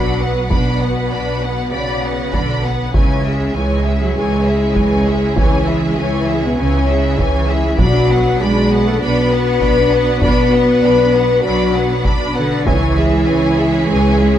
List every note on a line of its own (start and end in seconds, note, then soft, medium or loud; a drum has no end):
0.00 0.44 B1 soft
0.00 0.51 F#3 medium
0.00 2.91 B3 medium
0.00 0.21 D4 soft
0.00 0.32 F#4 medium
0.00 2.91 F#4 soft
0.00 2.91 B4 soft
0.00 0.20 D5 soft
0.00 2.91 F#5 medium
0.00 0.21 B5 soft
0.00 impact medium
0.20 0.52 B3 soft
0.20 0.51 B4 soft
0.20 0.51 F#5 soft
0.49 1.05 B1 medium
0.49 1.71 B2 medium
0.49 1.70 B3 medium
0.49 0.79 D4 soft
0.49 0.79 D5 soft
0.49 0.79 B5 soft
0.49 taiko medium
0.81 1.12 B3 soft
0.81 1.12 B4 soft
0.81 1.12 F#5 soft
1.11 1.66 B1 soft
1.11 1.43 D4 soft
1.11 1.42 D5 soft
1.11 1.42 B5 soft
1.41 1.73 B3 soft
1.41 1.73 B4 soft
1.41 1.73 F#5 soft
1.72 2.27 B1 medium
1.72 2.34 C#3 soft
1.72 2.34 C#4 medium
1.72 2.01 D5 soft
1.72 2.02 D5 soft
1.72 2.01 B5 soft
2.02 2.34 B3 soft
2.02 2.34 B4 soft
2.02 2.33 F#5 soft
2.33 2.88 B1 soft
2.33 2.64 D3 soft
2.33 2.64 D4 soft
2.33 2.65 D4 medium
2.33 2.64 D5 soft
2.33 2.64 B5 soft
2.33 taiko medium
2.64 2.94 B3 soft
2.64 2.95 B4 soft
2.64 2.95 F#5 soft
2.94 3.49 C#2 medium
2.94 3.51 C#3 medium
2.94 3.23 E3 soft
2.94 3.51 C#4 medium
2.94 7.80 C#4 medium
2.94 7.80 E4 medium
2.94 7.80 G#4 medium
2.94 3.23 C#5 soft
2.94 7.80 C#5 medium
2.94 3.23 G#5 soft
2.94 taiko medium
3.24 3.55 G#3 soft
3.24 3.56 G#4 soft
3.24 3.56 E5 soft
3.55 4.09 C#2 medium
3.55 3.86 E3 soft
3.55 4.01 G#3 medium
3.55 4.01 G#4 medium
3.55 3.86 C#5 soft
3.55 3.86 G#5 soft
3.85 4.16 G#3 soft
3.85 4.17 G#4 soft
3.85 4.16 E5 soft
4.02 4.16 F#3 medium
4.02 4.17 F#4 medium
4.15 4.70 C#2 medium
4.15 4.44 E3 soft
4.15 5.35 G#3 medium
4.15 5.37 G#4 medium
4.15 4.45 C#5 soft
4.15 4.45 G#5 soft
4.46 4.77 G#3 soft
4.46 4.77 G#4 soft
4.46 4.77 E5 soft
4.75 5.30 C#2 medium
4.75 5.07 E3 soft
4.75 5.07 C#5 soft
4.75 5.06 G#5 soft
4.75 taiko medium
5.05 5.37 G#3 soft
5.05 5.38 G#4 soft
5.05 5.36 E5 soft
5.37 5.91 C#2 medium
5.37 5.65 E3 soft
5.37 5.97 E3 medium
5.37 5.96 E4 medium
5.37 5.66 C#5 soft
5.37 5.65 G#5 soft
5.37 taiko medium
5.66 5.97 G#3 soft
5.66 5.98 G#4 soft
5.66 5.97 E5 soft
5.96 6.51 C#2 medium
5.96 6.42 E3 medium
5.96 6.28 E3 soft
5.96 6.42 E4 medium
5.96 6.29 C#5 soft
5.96 6.27 G#5 medium
6.28 6.58 G#3 soft
6.28 6.59 G#4 soft
6.28 6.58 E5 soft
6.44 6.59 B2 medium
6.44 6.59 B3 medium
6.58 7.12 C#2 medium
6.58 7.19 C#3 medium
6.58 6.86 E3 soft
6.58 7.19 C#4 medium
6.58 6.87 C#5 medium
6.58 6.87 G#5 medium
6.88 7.19 G#3 soft
6.88 7.20 G#4 soft
6.88 7.19 E5 medium
7.18 7.73 C#2 medium
7.18 7.80 E3 medium
7.18 7.50 E3 soft
7.18 7.79 E4 medium
7.18 7.50 C#5 medium
7.18 7.50 G#5 medium
7.18 taiko medium
7.48 7.79 G#3 soft
7.48 7.80 G#4 soft
7.48 7.79 E5 soft
7.79 8.33 B1 medium
7.79 8.67 B2 medium
7.79 8.39 F#3 medium
7.79 8.08 D4 medium
7.79 12.67 D4 medium
7.79 12.67 F#4 medium
7.79 8.39 F#4 medium
7.79 12.67 B4 medium
7.79 8.08 D5 medium
7.79 8.08 B5 medium
7.79 taiko medium
8.10 8.40 B3 medium
8.10 8.41 B4 medium
8.10 8.41 F#5 medium
8.40 8.94 B1 medium
8.40 8.86 G#3 medium
8.40 8.71 D4 medium
8.40 8.86 G#4 medium
8.40 8.71 D5 soft
8.40 8.71 B5 medium
8.70 9.01 B3 soft
8.70 9.01 B4 medium
8.70 9.02 F#5 medium
8.87 9.02 A3 medium
8.87 9.02 A4 medium
9.01 9.55 B1 medium
9.01 10.20 B3 medium
9.01 9.29 D4 medium
9.01 10.03 B4 medium
9.01 9.29 D5 medium
9.01 9.30 B5 medium
9.31 9.61 B3 soft
9.31 9.62 B4 medium
9.31 9.62 F#5 medium
9.61 10.15 B1 medium
9.61 9.92 D4 medium
9.61 9.92 D5 medium
9.61 9.93 B5 medium
9.61 taiko medium
9.91 10.22 B3 medium
9.91 10.22 B4 medium
9.91 10.22 F#5 medium
10.20 10.76 B1 medium
10.20 11.42 B3 medium
10.20 10.51 D4 medium
10.20 11.41 B4 loud
10.20 10.51 D5 medium
10.20 10.51 B5 medium
10.20 taiko medium
10.52 10.83 B3 medium
10.52 10.83 B4 medium
10.52 10.84 F#5 medium
10.83 11.37 B1 medium
10.83 11.14 D4 medium
10.83 11.14 D5 medium
10.83 11.14 B5 medium
11.13 11.44 B3 soft
11.13 11.44 B4 medium
11.13 11.45 F#5 medium
11.42 11.98 B1 medium
11.42 12.05 F#3 medium
11.42 11.72 D4 medium
11.42 12.04 F#4 medium
11.42 11.73 D5 medium
11.42 11.73 B5 medium
11.74 12.05 B3 soft
11.74 12.06 B4 medium
11.74 12.05 F#5 soft
12.05 12.60 B1 medium
12.05 12.36 D4 medium
12.05 12.36 D5 medium
12.05 12.36 B5 medium
12.05 taiko medium
12.35 12.65 D3 medium
12.35 12.66 B3 medium
12.35 12.64 D4 medium
12.35 12.67 B4 medium
12.35 12.66 F#5 medium
12.65 13.21 C#2 medium
12.65 12.95 E3 medium
12.65 13.89 E3 medium
12.65 14.39 C#4 medium
12.65 13.88 E4 medium
12.65 14.39 E4 medium
12.65 14.39 G#4 medium
12.65 14.39 C#5 medium
12.65 12.96 C#5 medium
12.65 12.94 G#5 medium
12.65 taiko medium
12.96 13.27 G#3 soft
12.96 13.28 G#4 soft
12.96 13.28 E5 medium
13.27 13.82 C#2 medium
13.27 13.58 E3 medium
13.27 13.58 C#5 medium
13.27 13.58 G#5 medium
13.58 13.89 G#3 soft
13.58 13.89 G#4 soft
13.58 13.89 E5 medium
13.88 14.39 C#2 medium
13.88 14.17 E3 medium
13.88 14.39 G#3 medium
13.88 14.39 G#4 medium
13.88 14.18 C#5 medium
13.88 14.17 G#5 medium
14.18 14.39 G#3 soft
14.18 14.39 G#4 soft
14.18 14.39 E5 soft